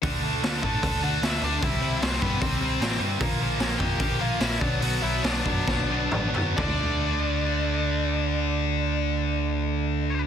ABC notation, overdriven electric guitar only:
X:1
M:4/4
L:1/8
Q:1/4=144
K:Dmix
V:1 name="Overdriven electric guitar" clef=bass
[D,A,D] [D,A,D] [D,A,D] [D,A,D] [D,A,D] [D,A,D] [D,A,D] [D,A,D] | [C,G,C] [C,G,C] [C,G,C] [C,G,C] [C,G,C] [C,G,C] [C,G,C] [C,G,C] | [_B,,=F,_B,] [B,,F,B,] [B,,F,B,] [B,,F,B,] [B,,F,B,] [B,,F,B,] [B,,F,B,] [=B,,^F,=B,] | [B,,F,B,] [B,,F,B,] [B,,F,B,] [B,,F,B,] [B,,F,B,] [B,,F,B,] [B,,F,B,] [B,,F,B,] |
[D,A,D]8- | [D,A,D]8 |]